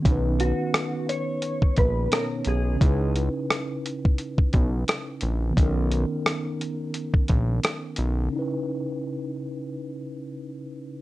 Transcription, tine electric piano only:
X:1
M:4/4
L:1/8
Q:"Swing 16ths" 1/4=87
K:B
V:1 name="Tine electric piano"
[D,B,CDB]6 [B,,B,CDc]2 | [C,CDEB]8 | [D,B,CDA]8 | [C,CDEB]8 |]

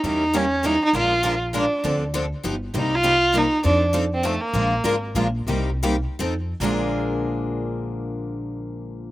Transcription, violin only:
X:1
M:3/4
L:1/8
Q:"Swing" 1/4=200
K:Bbmix
V:1 name="Violin"
E2 ^C2 E E | F3 z D2 | z6 | E F3 E2 |
D2 z C =A, B,- | B,3 z3 | z6 | z6 |
z6 |]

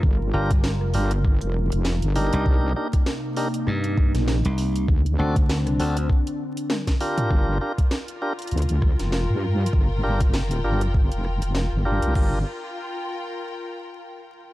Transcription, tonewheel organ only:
X:1
M:4/4
L:1/16
Q:"Swing 16ths" 1/4=99
K:Gm
V:1 name="Tonewheel organ"
z2 [DFGB] z3 [DFGB] z6 z [DEGB]2- | [DEGB]2 [DEGB]2 z2 [DEGB]2 z8 | z2 [CD^FA] z3 [CDFA] z6 z [D=FGB]2- | [DFGB]2 [DFGB]2 z2 [DFGB]2 z8 |
z2 [DFGB] z3 [DFGB] z6 z [DFGB]2 | [DFGB]2 z12 z2 |]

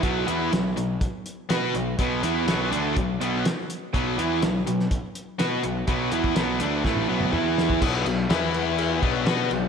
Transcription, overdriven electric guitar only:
X:1
M:4/4
L:1/8
Q:1/4=123
K:Bm
V:1 name="Overdriven electric guitar" clef=bass
[B,,F,B,] [E,B,E] [B,,F,] [B,,F,] z2 [B,FB] [B,,F,] | [B,,F,B,] [E,B,E] [B,,F,B,] [D,A,D] [B,,F,] [B,,F,B,] z2 | [B,,F,B,] [E,B,E] [B,,F,] [B,,F,] z2 [B,FB] [B,,F,] | [B,,F,B,] [E,B,E] [B,,F,B,] [D,A,D] [A,,E,A,] [B,,F,B,] [E,B,E]2 |
z8 |]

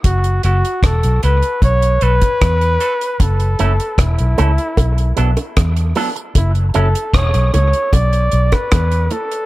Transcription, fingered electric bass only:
X:1
M:4/4
L:1/16
Q:1/4=76
K:F#m
V:1 name="Fingered electric bass" clef=bass
F,,,2 F,,, z E,,, B,,, C,, z B,,,2 B,,, z E,,2 z2 | F,,,2 F,,, z E,,, B,,, C,, z B,,,2 B,,, z E,,2 z2 | F,,,2 F,,, z E,,, B,,, C,, z B,,,2 B,,, z E,,2 z2 |]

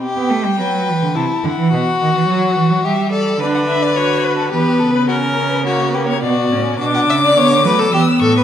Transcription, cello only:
X:1
M:3/4
L:1/16
Q:1/4=106
K:Em
V:1 name="Cello" clef=bass
z B, A, G, F,2 E, D, C,2 D, E, | B,,2 ^D, E, F,2 E, F, G,4 | D,8 E,2 ^C,2- | ^C,8 B,,2 A,,2 |
[K:Bm] B,,2 C,2 D,2 F,2 E,2 A,,2 |]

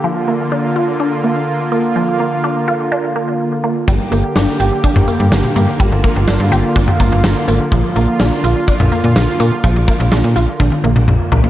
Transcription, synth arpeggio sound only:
X:1
M:4/4
L:1/8
Q:1/4=125
K:Bbmix
V:1 name="Synth arpeggio sound"
F, B, D F D B, z B, | F, B, D F D B, z B, | G, B, D G D B, z B, | G, B, D G D B, z B, |
F, B, D F D B, z B, | F, B, D F D B, z B, |]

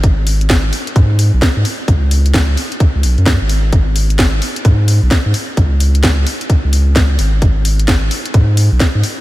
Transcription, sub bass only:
X:1
M:4/4
L:1/16
Q:"Swing 16ths" 1/4=130
K:C#dor
V:1 name="Sub bass" clef=bass
G,,,6 z2 G,,3 B,,, z G,, z2 | C,,6 z3 C,, B,,, F,,2 G,,,3 | G,,,6 z2 G,,3 B,,, z G,, z2 | C,,6 z3 C,,4- C,, G,,,2 |
G,,,6 z2 G,,3 B,,, z G,, z2 |]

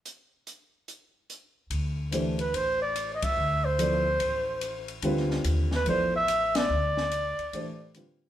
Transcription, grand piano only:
X:1
M:4/4
L:1/8
Q:"Swing" 1/4=144
K:Ddor
V:1 name="Grand piano"
z8 | z2 [E,A,DGc] z4 z | z2 [F,B,EAd] z4 z | [D,G,CFB]3 z [F,B,EAd] z3 |
z4 [E,A,DGc]2 [D,G,CFB]2 |]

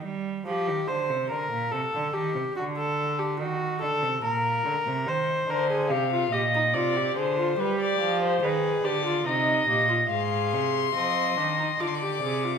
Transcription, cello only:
X:1
M:3/4
L:1/16
Q:1/4=72
K:Cm
V:1 name="Cello" clef=bass
G,2 F, E, D, C, D, B,, C, D, E, C, | D,4 E,2 D, C, B,,2 D, C, | E,2 D,2 C,2 B,,2 C,2 D,2 | G,2 F,2 E,2 D,2 C,2 B,,2 |
A,,2 C,2 F,2 E,2 D,2 C,2 |]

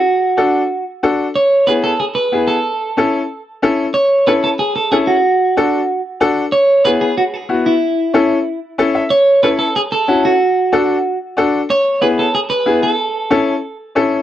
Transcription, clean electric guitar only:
X:1
M:4/4
L:1/8
Q:1/4=186
K:A
V:1 name="Clean electric guitar"
F4- F z3 | c2 B A G B2 A- | A4- A z3 | c2 B A G A G F- |
F4- F z3 | c2 B G F G2 E- | E4- E z3 | c2 B A G A2 F- |
F4- F z3 | c2 B A G B2 A- | A4- A z3 |]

